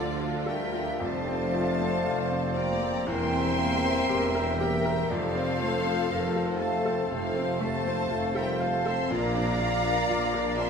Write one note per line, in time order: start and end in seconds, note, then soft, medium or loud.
0.00 0.89 D2 medium
0.00 1.03 A2 medium
0.00 0.46 D3 medium
0.00 0.89 D3 medium
0.00 1.03 F3 medium
0.00 3.03 F3 medium
0.00 0.18 A3 medium
0.00 0.98 D4 medium
0.00 1.03 D4 medium
0.00 0.18 F4 medium
0.00 0.19 F4 medium
0.00 0.47 F4 medium
0.00 0.23 A4 medium
0.00 0.46 A4 medium
0.00 0.69 A4 medium
0.00 0.47 D5 loud
0.00 0.48 F5 medium
0.19 0.47 D4 medium
0.19 0.63 F4 medium
0.19 0.47 A4 medium
0.46 1.02 G3 medium
0.46 0.75 A3 medium
0.46 0.75 F4 medium
0.46 0.90 A4 medium
0.46 1.02 A#4 medium
0.46 1.03 E5 medium
0.46 1.01 E5 medium
0.46 1.00 G5 loud
0.72 1.02 D4 medium
0.72 1.01 F4 medium
0.72 1.02 A4 medium
1.00 1.94 F1 medium
1.00 1.95 F1 medium
1.00 3.02 F2 medium
1.00 1.95 F2 medium
1.00 2.54 A3 medium
1.00 1.27 A3 medium
1.00 4.93 C4 medium
1.00 1.27 F4 medium
1.00 3.08 C5 medium
1.00 2.54 C5 medium
1.00 3.08 D5 medium
1.00 2.57 F5 medium
1.00 2.56 A5 loud
1.28 1.70 C4 medium
1.28 1.55 C4 medium
1.28 1.55 A4 medium
1.54 1.96 F3 medium
1.54 1.81 A3 medium
1.54 1.81 F4 medium
1.81 2.21 C4 medium
1.81 2.07 C4 medium
1.81 2.07 A4 medium
2.06 2.95 F1 medium
2.06 2.95 F2 medium
2.06 2.30 A3 medium
2.06 2.30 F4 medium
2.06 2.47 F4 medium
2.31 2.71 C4 medium
2.31 2.57 C4 medium
2.31 2.57 A4 medium
2.56 2.82 A3 medium
2.56 3.06 A#3 medium
2.56 2.96 F4 medium
2.56 2.82 F4 medium
2.56 3.07 D5 medium
2.56 3.04 G5 medium
2.56 3.07 A#5 loud
2.81 3.07 C4 medium
2.81 3.07 A4 medium
3.05 3.96 E1 medium
3.05 5.05 E2 medium
3.05 3.97 E2 medium
3.05 4.93 G3 medium
3.05 3.30 A#3 medium
3.05 4.42 C4 loud
3.05 3.30 A#4 medium
3.05 5.09 A#4 medium
3.05 4.08 C5 medium
3.05 4.58 E5 loud
3.05 4.54 G5 loud
3.05 4.59 C6 loud
3.31 3.57 C4 medium
3.31 3.73 C4 medium
3.31 3.57 C5 medium
3.57 3.83 A#3 medium
3.57 3.99 A#3 medium
3.57 3.83 A#4 medium
3.82 4.08 C4 medium
3.82 4.24 C4 medium
3.82 4.08 C5 medium
4.07 4.97 E1 medium
4.07 4.98 E1 medium
4.07 4.98 E2 medium
4.07 4.31 A#3 medium
4.07 4.49 G4 medium
4.07 4.31 A#4 medium
4.07 5.11 E5 medium
4.33 4.58 C4 medium
4.33 4.75 A#4 medium
4.33 4.58 C5 medium
4.58 5.09 G3 medium
4.58 4.84 A#3 medium
4.58 5.00 G4 medium
4.58 4.84 A#4 medium
4.58 5.09 A#4 medium
4.58 5.09 E5 medium
4.58 5.09 G5 loud
4.83 5.09 C4 medium
4.83 5.10 A#4 medium
4.83 5.09 C5 medium
5.08 5.99 F1 medium
5.08 5.99 F2 medium
5.08 7.07 F2 medium
5.08 9.07 F3 medium
5.08 6.61 F3 loud
5.08 5.34 A3 medium
5.08 9.07 C4 medium
5.08 8.80 A4 medium
5.08 5.33 A4 medium
5.08 6.61 A4 loud
5.08 6.34 C5 loud
5.08 5.60 D5 medium
5.08 6.60 F5 loud
5.35 5.60 C4 medium
5.35 5.76 C4 medium
5.35 5.60 C5 medium
5.60 5.85 A3 medium
5.60 6.01 A3 medium
5.60 5.85 A4 medium
5.60 6.10 C5 medium
5.85 6.10 C4 medium
5.85 6.25 C4 medium
5.85 6.10 C5 medium
6.10 6.99 F1 medium
6.10 6.99 F2 medium
6.10 6.34 A3 medium
6.10 6.50 F4 medium
6.10 6.34 A4 medium
6.10 6.62 A#4 medium
6.36 6.61 C4 medium
6.36 6.75 A4 medium
6.36 6.61 C5 medium
6.60 6.85 A3 medium
6.60 7.11 A3 medium
6.60 7.00 F4 medium
6.60 6.85 A4 medium
6.60 7.85 A4 medium
6.60 7.10 C5 medium
6.60 7.09 F5 medium
6.60 7.10 A5 medium
6.85 7.10 C4 medium
6.85 7.25 A4 medium
6.85 7.10 C5 medium
7.10 7.99 F1 medium
7.10 7.99 F2 medium
7.10 7.51 C3 medium
7.10 7.61 F3 medium
7.10 7.34 A3 medium
7.10 7.61 A4 medium
7.10 7.34 A4 medium
7.10 7.60 C5 medium
7.10 7.61 F5 loud
7.35 7.76 C4 medium
7.35 7.61 C4 medium
7.35 7.61 C5 medium
7.60 8.36 A3 loud
7.60 8.01 A3 medium
7.60 7.86 A3 medium
7.60 7.86 A4 medium
7.60 8.36 C5 loud
7.60 8.35 F5 medium
7.60 8.35 A5 loud
7.86 8.26 C4 medium
7.86 8.11 C4 medium
7.86 8.11 C5 medium
8.10 8.98 F1 medium
8.10 8.99 F1 medium
8.10 8.99 F2 medium
8.10 8.34 A3 medium
8.10 8.50 F4 medium
8.10 8.34 A4 medium
8.10 9.07 C5 medium
8.35 8.60 G3 medium
8.35 8.61 C4 medium
8.35 8.75 A4 medium
8.35 8.60 A#4 medium
8.35 8.60 C5 medium
8.35 8.60 E5 medium
8.35 8.60 G5 medium
8.59 8.86 A3 medium
8.59 9.00 F4 medium
8.59 8.86 A4 medium
8.59 8.85 C5 medium
8.59 8.85 F5 medium
8.59 8.86 A5 medium
8.85 9.11 C4 medium
8.85 9.11 A4 medium
8.85 9.11 C5 medium
8.85 9.11 E5 medium
8.85 9.11 A5 medium
8.85 9.11 C6 loud
9.10 9.98 A#1 loud
9.10 9.98 A#1 medium
9.10 10.70 A#2 medium
9.10 9.98 A#2 medium
9.10 10.70 F3 medium
9.10 10.60 A#3 loud
9.10 10.70 D4 medium
9.10 9.34 F4 medium
9.10 10.70 A#4 medium
9.10 9.34 A#4 medium
9.10 10.55 D5 loud
9.10 10.70 D5 medium
9.10 10.58 F5 loud
9.10 10.59 A#5 loud
9.35 9.75 D4 medium
9.35 9.61 D4 medium
9.35 9.61 D5 medium
9.60 10.00 A#3 medium
9.60 9.85 F4 medium
9.60 9.85 A#4 medium
9.84 10.24 D4 medium
9.84 10.10 D4 medium
9.84 10.10 D5 medium
10.09 10.70 A#1 medium
10.09 10.70 A#2 medium
10.09 10.48 F4 medium
10.09 10.32 F4 medium
10.09 10.32 A#4 medium
10.34 10.58 D4 medium
10.34 10.70 A#4 medium
10.34 10.58 D5 medium
10.57 10.70 C4 medium
10.57 10.70 F4 medium
10.57 10.70 A#4 medium
10.57 10.70 E5 medium
10.57 10.70 A5 medium
10.57 10.70 C6 loud